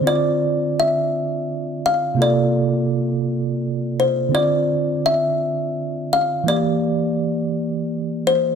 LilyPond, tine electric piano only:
\new Staff \with { instrumentName = "Tine electric piano" } { \time 6/8 \key d \minor \tempo 4. = 56 <d c' f' d''>2. | <c bes f' a' d''>2. | <d c' f' d''>2. | <e bes g' d''>2. | }